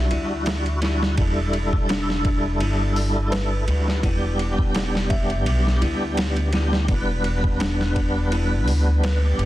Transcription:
Already playing: G3 D4 E4 F#4
0.11 D2 E4, ride
0.46 snare, ride
0.66 ride
0.81 G3 D4 E4 F#4, snare, ride
1.02 snare
1.15 E1 G3 D4, kick, ride
1.20 E4 A4
1.53 ride
1.73 kick
1.89 D4, snare, ride
2.10 snare
2.25 kick, ride
2.60 G1 E4, ride
2.96 open hi-hat
3.32 B4, snare, ride
3.67 D2 G3 D4 E4 F#4, ride
3.88 snare
4.00 E1 G3 B3 E4, kick, ride
4.05 D4 G4
4.39 ride
4.58 kick
4.75 snare, ride
4.95 snare
5.10 E5, kick, ride
5.30 ride
5.46 B1, ride
5.67 snare
5.82 D2 E4, ride
6.17 snare, ride
6.36 ride
6.53 G3 B3 D4 E4 G4, snare, ride
6.73 snare
6.86 E1 G3 B3, kick, ride
6.91 D4 B4
7.24 ride
7.44 kick
7.60 D4, snare, ride
7.81 snare
7.96 kick, ride
8.32 E4, ride
8.67 D2, open hi-hat
9.03 B4, snare, ride
9.22 G3 B3 D4 G4
9.38 G1, ride

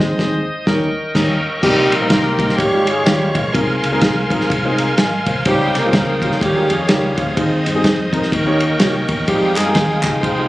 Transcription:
Already playing: G#3 C4 D#4 G#4 C5 D#5 D#6
0.00 D#2 G#3 C4 D#4 C5, snare
0.19 D#2 G#3 C4 D#4 C5, kick, snare
0.67 D#2 D#3 G3 C#4 D#4 A#4 G5 C#6, kick, snare
1.15 D#2 G3 C#4 D#4 A#4, kick, snare, crash
1.63 C2 C3 G3 A#3 C4 D#4 G4 A#4 D#5 G5 C6, kick, crash
1.92 A#1 A#3 A#4, ride
2.01 G3 A#3 C4 D#4 A#4
2.09 C2 A#3 D#4 G4 A#4, kick, snare, ride
2.39 G3 A#3 C4 D#4 A#4, kick, ride
2.49 snare
2.57 G#1 G#2 G3 G#3 C#4 G4 C#5 F5 C#6, kick, ride
2.72 G#3 C#4 F4
2.87 G#3 G#4, ride
3.05 D#2 G3 G#3 C#4 D#4 G4, snare, ride
3.12 F4
3.34 B1 F3 G#3 A#3 F4, kick, ride
3.53 C2 C3 G#3 C4 D#4 F4 A#4 G#5 C6, kick, ride
3.83 C#2, ride
3.92 G#3 C4 D#4 F4 A#4
4.01 C2, kick, snare, ride
4.30 A#1 G#3 C4 D#4 F4 A#4, kick, ride
4.41 snare
4.50 C2, kick, ride
4.64 G#3 C4 D#4 F4 C5
4.78 F5 A#5, ride
4.98 G#1 D#5 G#5, snare, ride
5.26 C2 C5 F5, kick, ride
5.45 C#2 C#3 G3 C4 C#4 D#4 F4 G4 C5 G5 D#6, kick, ride
5.74 C2, snare, ride
5.80 A#3 A#4
5.84 G3 C#4 D#4 F4 G#4
5.93 C#2 A#3 D#4 F4 A#4, kick, snare, ride
6.22 G3 C#4 D#4 F4 G4, kick, ride
6.32 snare
6.41 D#2 D#3 G3 A#3 C#4 G4 C#5, kick, ride
6.55 G#3 C#4 D#4 F4 A#4
6.70 F2 G#3 G#4, ride
6.89 C#2 G3 G#3 C#4 D#4 F4 G4 A#4, snare, ride
7.17 D2 F3 G#3 C4 F4, kick, ride
7.36 D#2 D#3 C4 D#4 G#4 C5 D#5, kick, ride
7.66 G2, snare, ride
7.74 C4 D#4 G#4
7.84 F2, kick, snare, ride
8.13 C4 D#4 A#4, kick, ride
8.23 snare
8.32 D#2 D#3 A#4 D#5 G5 C#6, kick, ride
8.46 A#3 C#4 D#4 G4 C#5
8.60 ride
8.79 C2 A#3 C#4 D#4 F#4 C#5, snare, ride
8.86 G4
9.09 E2, kick, ride
9.28 F2 G3 G#3 C4 D#4 F4 G4 C5 F5 D#6, kick, ride
9.56 G2 G#3 C4 D#4 G#4, snare, clap, ride
9.66 G#3 D#4 F4 G4 A#4
9.75 D#2, kick, snare, ride
10.03 C#2 G#3 D#4 F4 G4 D#5, kick, clap, ride
10.22 C2 C4 D#4 G#4 C5, kick, ride
10.38 G#3 D#4 F4 G4 D#5

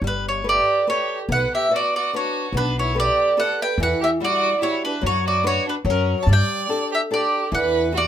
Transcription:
0.02 G1 G3
0.07 B4
0.28 C#5
0.44 G4 A4 B4
0.48 G4 D5
0.87 G4 A4 B4 C#5
1.29 B1 B3 B4 F#5
1.55 G4 E5
1.70 F#4 B4 D5
1.74 F#4 D5
1.96 F#4 D5
2.13 D4 F#4 B4 C#5
2.53 B1 B3
2.57 D4 B4
2.79 E4 C#5
2.94 G4 A4 B4
2.99 G4 D5
3.37 G4 A4 B4 F#5
3.61 B4 G5
3.78 E2 E3
3.82 B4 F#5
4.01 G4 E5
4.20 G3 E4 F#4
4.25 D5
4.61 E4 F#4 G4 C#5
4.85 D4 B4
5.01 F#2 F#3 F#4
5.06 C#5
5.26 F#4 D5
5.43 D4 F#4 B4 C#5
5.67 D4 B4
5.85 F#2 F#3 C#4
5.90 A#4
6.19 C#5 A5
6.27 G2 G3 D5
6.33 G5
6.69 D4 G4 A4
6.92 G4 E5
7.11 D4 G4 A4 D5
7.52 E2 E3 B4 F#5
7.92 E4 F#4 G4
7.97 D5

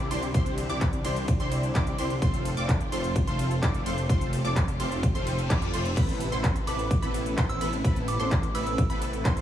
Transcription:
Already playing: D3 E3 G3 C4 E4
0.11 C2 C4 D4 E4 G4 C5 C6, open hi-hat, ride
0.23 closed hi-hat
0.34 C2 C4 D4 E4 G4 C5 C6, kick, closed hi-hat
0.46 closed hi-hat
0.58 open hi-hat, ride
0.69 C2 C4 D4 E4 G4 D5 D6, closed hi-hat
0.81 kick, clap, closed hi-hat
0.93 closed hi-hat
1.05 C2 C4 D4 E4 G4 C5 C6, open hi-hat, ride
1.16 closed hi-hat
1.28 kick, closed hi-hat
1.40 C2 C4 D4 E4 G4 C5 C6, closed hi-hat
1.52 open hi-hat, ride
1.63 closed hi-hat
1.75 C2 C4 D4 E4 G4 D5 D6, kick, clap, closed hi-hat
1.87 closed hi-hat
1.98 C2 C4 D4 E4 G4 C5 C6, open hi-hat, ride
2.10 closed hi-hat
2.22 F1 A2 C3 F3 A3 C4 F4 A4 C5 C6, kick, closed hi-hat
2.34 closed hi-hat
2.45 open hi-hat, ride
2.57 F1 A3 C4 F4 A4 D5 D6, closed hi-hat
2.69 kick, clap, closed hi-hat
2.81 closed hi-hat
2.92 F1 A3 C4 F4 A4 C5 C6, open hi-hat, ride
3.04 closed hi-hat
3.16 kick, closed hi-hat
3.27 F1 A3 C4 F4 A4 C5 C6, closed hi-hat
3.39 open hi-hat, ride
3.51 closed hi-hat
3.62 F1 A3 C4 F4 A4 D5 D6, kick, clap, closed hi-hat
3.74 closed hi-hat
3.86 F1 A3 C4 F4 A4 C5 C6, open hi-hat, ride
3.98 closed hi-hat
4.09 F1 A3 C4 F4 G4 A4 C5 C6, kick, closed hi-hat
4.21 closed hi-hat
4.33 open hi-hat, ride
4.45 F1 A3 C4 F4 A4 D5 D6, closed hi-hat
4.56 kick, clap, closed hi-hat
4.68 closed hi-hat
4.80 F1 A3 C4 F4 A4 C5 C6, open hi-hat, ride
4.92 closed hi-hat
5.03 kick, closed hi-hat, reverse cymbal
5.15 F1 A3 C4 F4 A4 C5 C6, closed hi-hat
5.27 open hi-hat, ride
5.38 closed hi-hat
5.50 F2 A3 C4 F4 A4 D5 D6, kick, clap, closed hi-hat
5.62 closed hi-hat
5.74 F1 A3 C4 F4 A4 C5 C6, open hi-hat, ride
5.85 closed hi-hat
5.97 A1 E3 A3 B3 C4 E4 A4 B4 B5, kick, closed hi-hat, crash
6.09 closed hi-hat
6.21 open hi-hat, ride
6.32 A1 B3 C4 E4 A4 C5 C6, closed hi-hat
6.44 kick, clap, closed hi-hat
6.56 closed hi-hat
6.67 A1 B3 C4 E4 A4 B4 B5 D6, open hi-hat, ride
6.79 closed hi-hat
6.91 kick, closed hi-hat
7.02 A1 B3 C4 E4 A4 B4 B5, closed hi-hat
7.14 open hi-hat, ride
7.26 closed hi-hat
7.38 A1 B3 C4 E4 A4 C5 C6, kick, clap, closed hi-hat
7.49 E6, closed hi-hat
7.61 A1 B3 C4 E4 A4 B4 B5, open hi-hat, ride
7.73 closed hi-hat
7.84 A1 B3 C4 E4 A4 B4 B5, kick, closed hi-hat
7.96 closed hi-hat
8.08 D6, open hi-hat, ride
8.20 A1 B3 C4 E4 A4 C5 C6 D6, closed hi-hat
8.31 kick, clap, closed hi-hat
8.43 closed hi-hat
8.55 A1 B3 C4 E4 A4 B4 B5 E6, open hi-hat, ride
8.66 E6, closed hi-hat
8.78 kick, closed hi-hat
8.90 A1 B3 C4 E4 A4 B4 B5, closed hi-hat
9.02 open hi-hat, ride
9.13 closed hi-hat
9.25 A1 B3 C4 E4 A4 C5 C6, kick, clap, closed hi-hat
9.37 closed hi-hat

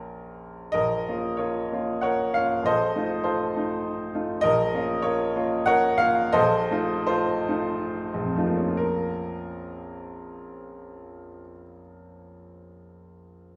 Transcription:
Already playing: A#1 A#3 C#4 F4 A#4
0.72 A#1 A#4 D#5
1.09 A#3 C#4 F4
1.37 F4 A#4 C#5
1.72 A#3 C#4 F4
2.01 A#4 C#5 F#5
2.34 A#3 C#4 F4 F5
2.63 A#1 A4 C5 D#5
2.95 A3 D#4 F4
3.24 F4 A4 C5
3.56 A3 D#4 F4
4.15 A3 D#4 F4
4.41 A#1 A#4 D#5
4.74 A#3 C#4 F4
5.02 F4 A#4 C#5
5.36 A#3 C#4 F4
5.66 A#4 C#5 F#5
5.98 A#3 C#4 F4 F5
6.33 A#1 A4 C5 D#5
6.71 A3 D#4 F4
7.07 F4 A4 C5
7.48 A3 D#4 F4
8.14 A#1
8.25 F2
8.35 F3 A3 D#4 F4
8.46 A#3
8.57 C#4
8.68 F4
8.77 A#4

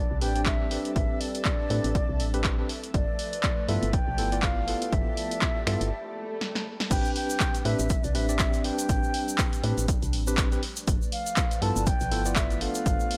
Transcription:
Already playing: G3 C4 D4 G4 A4 B4 D5 E5 A5
0.11 C2
0.21 A1 C4 D4 G4 B4 G5, open hi-hat
0.35 C4 D4 G4 D5, closed hi-hat
0.46 E5, kick, clap, closed hi-hat
0.70 C4 D4 G4 B4, open hi-hat
0.85 closed hi-hat
0.96 A1 E5, kick, closed hi-hat
1.21 D5, open hi-hat
1.35 closed hi-hat
1.45 kick, clap, closed hi-hat
1.70 A2 C4 D4 G4 B4, open hi-hat
1.84 A1, closed hi-hat
1.95 kick, closed hi-hat
2.09 C2
2.20 A1, open hi-hat
2.34 C4 D4 G4 B4, closed hi-hat
2.44 kick, clap, closed hi-hat
2.58 C4 D4 G4 B4
2.69 F3 A3 G4 B4 D5, open hi-hat
2.83 closed hi-hat
2.94 G1 D5 A5, kick, closed hi-hat
3.18 D5, open hi-hat
3.33 closed hi-hat
3.43 kick, clap, closed hi-hat
3.68 G2 B3 E4 F4 A4 E5, open hi-hat
3.83 G1, closed hi-hat
3.93 G5, kick, closed hi-hat
4.07 B1
4.18 G1 B3 E4 F4 A4, open hi-hat
4.32 B3 E4 F4 D5, closed hi-hat
4.38 B5
4.42 F5, kick, clap, closed hi-hat
4.67 B3 E4 F4 A4, open hi-hat
4.82 closed hi-hat
4.92 G1 E5, kick, closed hi-hat
5.17 open hi-hat
5.31 closed hi-hat
5.42 kick, clap, closed hi-hat
5.67 G2 B3 E4 F4 A4, finger snap, open hi-hat
5.81 G1, closed hi-hat
5.92 swell
6.41 snare
6.55 snare
6.80 snare
6.90 A1 G3 C4 D4 G4 B4 G5, kick, closed hi-hat, crash, shaker
7.05 shaker
7.16 G5, open hi-hat
7.30 closed hi-hat, shaker
7.40 kick, clap, closed hi-hat, shaker
7.55 closed hi-hat, shaker
7.65 A2 C4 D4 G4 B4 E5, open hi-hat
7.79 A1, closed hi-hat, shaker
7.90 kick, closed hi-hat, shaker
8.04 C2 D5, closed hi-hat, shaker
8.15 A1 C4 D4 G4 B4 E5, open hi-hat
8.29 C4 D4 G4 D5, closed hi-hat, shaker
8.39 kick, clap, closed hi-hat, shaker
8.53 closed hi-hat, shaker
8.64 C4 D4 G4 B4 G5, open hi-hat
8.78 closed hi-hat, shaker
8.89 A1, kick, closed hi-hat, shaker
9.04 shaker
9.14 open hi-hat
9.28 closed hi-hat, shaker
9.38 kick, clap, closed hi-hat, shaker
9.53 closed hi-hat, shaker
9.63 A2 C4 D4 G4 B4, open hi-hat
9.78 A1, closed hi-hat, shaker
9.88 kick, closed hi-hat, shaker
10.02 C2, closed hi-hat, shaker
10.13 A1, open hi-hat
10.27 C4 D4 G4 B4, closed hi-hat, shaker
10.37 kick, clap, closed hi-hat, shaker
10.52 C4 D4 G4 B4, closed hi-hat, shaker
10.63 F3 A3 B4 D5, open hi-hat
10.76 closed hi-hat, shaker
10.88 G1, kick, closed hi-hat, shaker
11.02 shaker
11.12 F5, open hi-hat
11.26 closed hi-hat, shaker
11.37 kick, clap, closed hi-hat, shaker
11.51 closed hi-hat, shaker
11.62 G2 B3 E4 F4 A4 A5, open hi-hat
11.76 G1, closed hi-hat, shaker
11.86 G5, kick, closed hi-hat, shaker
12.00 B1, closed hi-hat, shaker
12.11 G1 B3 E4 F4 A4, open hi-hat
12.25 B3 E4 F4 D5, closed hi-hat, shaker
12.36 E5, kick, clap, closed hi-hat, shaker
12.50 closed hi-hat, shaker
12.61 B3 D4 F4 A4 F5, open hi-hat
12.75 closed hi-hat, shaker
12.86 G1, kick, closed hi-hat, shaker
13.00 shaker
13.11 open hi-hat

